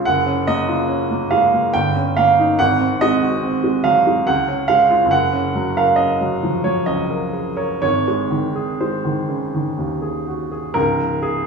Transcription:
0.05 F#1 F#5
0.26 C#4
0.47 A#3 D#5
0.69 F4
0.89 C#4
1.11 A#3
1.31 G#3 F5
1.53 A#3
1.74 G1 G5
1.96 C#4
2.17 A#3 F5
2.39 D#4
2.59 G#1 F#5
2.80 C4
3.01 G#3 D#5
3.22 F#4
3.43 C4
3.64 G#3
3.84 F#3 F5
4.07 G#3
4.27 C#2 F#5
4.48 C#4
4.68 G#3 F5
4.91 F4
5.05 F#1
5.11 F#5
5.33 C#4
5.55 F#3
5.77 A#4 F5
5.96 C#4 D#5
6.21 F#3
6.43 F3
6.64 F#3 C#5
6.86 C#2 D#5
7.10 A#4
7.33 G#4
7.57 A#4 C#5
7.82 G#1 C#5
8.08 G#3
8.30 D#3
8.55 G#4
8.81 G#3 C5
9.05 D#3
9.29 C#3
9.54 D#3
9.78 D#2
10.02 G#4
10.27 F#4
10.52 G#4
10.74 C#1 C#2 A#4
11.22 G#4

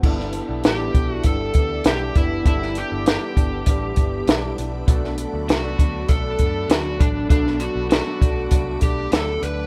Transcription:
0.02 G1 G2 E3 B3 D4 E4 G4 A4 E5 B5 D6, kick, crash
0.20 snare
0.33 E3 B3 D4, closed hi-hat
0.48 B1 B3 D4 E4 A4
0.63 A1 G2 E3 B3 D4 G4, snare, closed hi-hat
0.78 B3 D4 E4 A4
0.94 B1 E3 B3 D4, kick, closed hi-hat
1.11 F#4
1.24 G1 G2 E3 B3 D4 A4, kick, closed hi-hat
1.54 D2 E3 B3 D4, kick, closed hi-hat
1.84 B1 G2 E3 B3 D4 G4, snare, closed hi-hat
2.15 F#1 E3 B3 D4 E4, kick, closed hi-hat
2.43 G1 G2 E3 B3 D4 E4 A4, kick, closed hi-hat
2.48 D4 E4
2.62 snare
2.75 E3 B3 D4 G4, closed hi-hat
2.89 G1 B3 D4 E4 A4
3.05 G2 E3 B3 D4 G4, snare, closed hi-hat
3.20 B3 D4 E4 G4
3.35 G1 E3 B3 D4, kick, closed hi-hat
3.65 A1 G2 E3 B3 D4, kick, closed hi-hat
3.95 G1 E3 B3 D4, kick, closed hi-hat
4.25 B1 G2 E3 B3 D4, snare, closed hi-hat
4.56 B1 E3 B3 D4, closed hi-hat
4.86 B1 B2 F#3 A3 B3 D4 F#4 A4 F#5 D6, kick, closed hi-hat
5.04 snare
5.18 F#3 A3 D4, closed hi-hat
5.33 D2 B3 D4 F#4 A4
5.47 C2 B2 F#3 A3 D4 F#4, snare, closed hi-hat
5.62 B3 D4 F#4 A4
5.78 D2 F#3 A3 D4, kick, closed hi-hat
6.09 B1 B2 F#3 A3 D4 A4, kick, closed hi-hat
6.38 F#2 F#3 A3 D4, kick, closed hi-hat
6.68 D2 B2 F#3 A3 D4 F#4, snare, closed hi-hat
6.98 A1 F#3 A3 D4, kick, closed hi-hat
7.28 B1 B2 F#3 A3 B3 D4 F#4 A4, kick, closed hi-hat
7.47 snare
7.59 F#3 A3 D4 F#4, closed hi-hat
7.75 B1 B3 D4 F#4 A4
7.89 B2 F#3 A3 D4 F#4, snare, closed hi-hat
8.05 B3 D4 A4 F#5
8.19 B1 F#3 A3 D4, kick, closed hi-hat
8.49 C2 B2 F#3 A3 D4, kick, closed hi-hat
8.80 B1 A3 D4 G4, kick, closed hi-hat
9.10 D2 B2 F#3 A3 D4 A4, snare, closed hi-hat
9.40 D2 F#3 A3 D4 B4, closed hi-hat

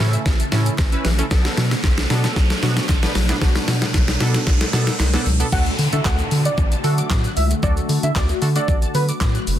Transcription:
Already playing: C#3 A3 E4, riser
0.00 A2 C#4 E4 A4
0.13 E5, closed hi-hat, shaker
0.26 A1 E3, kick, snare, shaker
0.40 A5, closed hi-hat, shaker
0.52 A2 E3 C#4 E4 A4, snare, open hi-hat, shaker
0.66 closed hi-hat, shaker
0.78 A1, kick, snare, clap, shaker
0.92 C#4 E4 B4 E6, closed hi-hat, shaker
1.05 A#1 E3, snare, open hi-hat, shaker
1.18 C#4 E4 A4, closed hi-hat, shaker
1.31 B1 B2 F#3 B3 D4 A4, kick, snare, shaker
1.45 snare, closed hi-hat, shaker
1.57 B2 F#3, snare, open hi-hat, shaker
1.71 B3, snare, closed hi-hat, shaker
1.84 B1, kick, snare, clap, shaker
1.98 B1 D4, snare, closed hi-hat, shaker
2.10 B2 F#3 B3 D4 A4, snare, open hi-hat, shaker
2.24 F#4, snare, closed hi-hat, shaker
2.36 B1 F#3, kick, snare, shaker
2.50 A4, snare, closed hi-hat, shaker
2.63 B2 F#3 B3 D4 F#4, snare, open hi-hat, shaker
2.77 snare, closed hi-hat, shaker
2.89 A1, kick, snare, clap, shaker
3.03 B3 D4 B4 D5, snare, closed hi-hat, shaker
3.15 A#1 F#3, snare, open hi-hat, shaker
3.29 B3 D4 E4, snare, closed hi-hat, shaker
3.42 B1 F#3 B3 D4 F#4, kick, snare, shaker
3.55 snare, closed hi-hat, shaker
3.68 B2 F#3, snare, open hi-hat, shaker
3.82 B3, snare, closed hi-hat, shaker
3.94 B1, kick, snare, clap, shaker
4.08 B1 D4, snare, closed hi-hat, shaker
4.20 B2 F#3 B3 D4 A4, snare, open hi-hat, shaker
4.34 F#4, snare, closed hi-hat, shaker
4.47 B1 F#3, kick, snare, shaker
4.61 A4, snare, closed hi-hat, shaker
4.73 B2 F#3 B3 D4 A4, snare, open hi-hat, shaker
4.87 snare, closed hi-hat, shaker
5.00 C2, snare, clap, shaker
5.13 B3 D4 A4 D5, snare, closed hi-hat, shaker
5.26 C#2 F#3, open hi-hat, shaker
5.40 B3 D4 A4, closed hi-hat, shaker
5.52 D2 D3 F#3 A3 D4 F#4 A4 F#5, kick, crash, downlifter, shaker
5.66 A3, closed hi-hat, shaker
5.79 D3, open hi-hat, shaker
5.92 D3 A3 D4 F#4 A4 E5, closed hi-hat, shaker
6.05 D2 F#5, kick, snare, clap, shaker
6.19 F#4, closed hi-hat, shaker
6.31 D3, open hi-hat, shaker
6.45 D5 F#5, closed hi-hat, shaker
6.58 A1, kick, shaker
6.72 A5, closed hi-hat, shaker
6.84 D3 F#3 A3 D4 F#4 A4, open hi-hat, shaker
6.98 D6, closed hi-hat, shaker
7.10 A2 F#3, kick, snare, clap, shaker
7.24 F#6, closed hi-hat, shaker
7.37 C#2 E5, open hi-hat, shaker
7.51 A3, closed hi-hat, shaker
7.63 D2 F#3 A3 D4 F#4 A4 D5, kick, shaker
7.77 A3, closed hi-hat, shaker
7.89 D3, open hi-hat, shaker
8.03 D3 D4 E5, closed hi-hat, shaker
8.15 D2 D5, kick, snare, clap, shaker
8.29 F#4, closed hi-hat, shaker
8.42 D3 A3 D4 F#4 A4, open hi-hat, shaker
8.56 A3 D4 F#4 A4 D5 F#5, closed hi-hat, shaker
8.68 A1, kick, shaker
8.82 A5, closed hi-hat, shaker
8.94 D3 F#3 B4, open hi-hat, shaker
9.09 D6, closed hi-hat, shaker
9.21 A2 F#3, kick, snare, clap, shaker
9.35 F#6, closed hi-hat, shaker
9.47 F1, open hi-hat, shaker

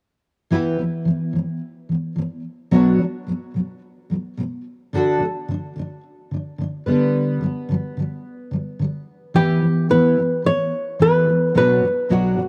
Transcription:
0.50 E3 B3 E4 G4 B4
0.79 E3 B3
1.05 E3 B3
1.33 E3 B3
1.89 E3 B3
2.16 E3 B3
2.71 B2 F#3 B3 D4 F#4 C#5
2.98 B2 F#3 B3
3.27 B2 F#3 B3
3.54 B2 F#3 B3
4.10 B2 F#3 B3
4.37 B2 F#3 B3
4.93 D3 D4 F#4 A4
5.20 D3 D4
5.48 D3 D4
5.76 D3 D4
6.31 D3 D4
6.58 D3 D4
6.86 D3 G3 B3 B4
7.41 D3 G3
7.69 D3 G3
7.97 D3 G3
8.51 D3 G3
8.79 D3 G3
9.34 E3 B3 E4 G4 B4
9.62 E3 B3
9.89 E3 B3 E4 G4 B4
10.17 E3 B3
10.44 E3 B3 C#5
10.99 E3 B3 E4 G4 B4
11.27 E3 B3
11.54 B2 F#3 B3 D4 F#4 B4 C#5
11.82 B2 F#3 B3
12.09 B2 F#3 B3 D4 F#4 C#5
12.37 B2 F#3 B3

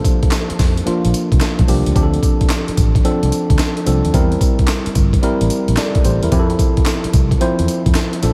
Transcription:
Already playing: F3 A#3 D4 A4
0.05 kick, closed hi-hat, tambourine
0.23 muted fretless electric bass stroke, kick, closed hi-hat
0.31 snare, clap, closed hi-hat, tambourine
0.50 muted fretless electric bass stroke, closed hi-hat
0.59 F2, kick, snare, open hi-hat, tambourine
0.77 closed hi-hat
0.86 F3 A#3 D4 F4, muted fretless electric bass stroke, closed hi-hat
1.05 A#1, closed hi-hat
1.14 closed hi-hat, tambourine
1.32 C2, kick, closed hi-hat
1.40 snare, clap, closed hi-hat, tambourine
1.59 B1, kick, closed hi-hat
1.68 C2 F3 A#3 D4 G4, open hi-hat, tambourine
1.86 C#2, closed hi-hat
1.95 D2 F3 C4 D4 G4, kick, closed hi-hat, tambourine
2.03 A4
2.14 closed hi-hat
2.23 kick, closed hi-hat, tambourine
2.41 muted fretless electric bass stroke, kick, closed hi-hat
2.49 snare, clap, closed hi-hat, tambourine
2.68 muted fretless electric bass stroke, closed hi-hat
2.77 A1, kick, closed hi-hat, tambourine
2.95 kick, closed hi-hat
3.04 F3 C4 D4 A4, muted fretless electric bass stroke, closed hi-hat
3.23 C2, closed hi-hat
3.32 closed hi-hat, tambourine
3.50 D2, kick, closed hi-hat
3.58 snare, clap, closed hi-hat, tambourine
3.77 closed hi-hat
3.86 C2 F3 C4 D4 A4, closed hi-hat, tambourine
4.05 D#2, closed hi-hat
4.14 E2 G3 C4 E4 A#4, kick, closed hi-hat, tambourine
4.32 closed hi-hat
4.41 kick, closed hi-hat, tambourine
4.59 muted fretless electric bass stroke, kick, closed hi-hat
4.67 snare, clap, closed hi-hat, tambourine
4.86 muted fretless electric bass stroke, closed hi-hat
4.95 G1, kick, closed hi-hat, tambourine
5.13 kick, closed hi-hat
5.22 G3 C4 E4 A#4, muted fretless electric bass stroke, closed hi-hat
5.41 A1, closed hi-hat
5.50 closed hi-hat, tambourine
5.68 A#1, closed hi-hat
5.76 A4 D5, snare, clap, closed hi-hat, tambourine
5.95 kick, closed hi-hat
6.04 A1 G4 C5, closed hi-hat, tambourine
6.23 E2 E4 A#4, closed hi-hat
6.32 F2 F3 C4 E4 G4, kick, closed hi-hat, tambourine
6.39 A4
6.50 closed hi-hat
6.59 kick, closed hi-hat, tambourine
6.77 muted fretless electric bass stroke, kick, closed hi-hat
6.85 snare, clap, closed hi-hat, tambourine
7.04 muted fretless electric bass stroke, closed hi-hat
7.13 C2, kick, closed hi-hat, tambourine
7.31 kick, closed hi-hat
7.40 F3 C4 E4 C5, muted fretless electric bass stroke, closed hi-hat
7.59 E2, closed hi-hat
7.68 closed hi-hat, tambourine
7.86 F2, kick, closed hi-hat
7.94 snare, clap, closed hi-hat, tambourine
8.13 closed hi-hat
8.22 A#1 F3 A#3 D4 A4, closed hi-hat, tambourine

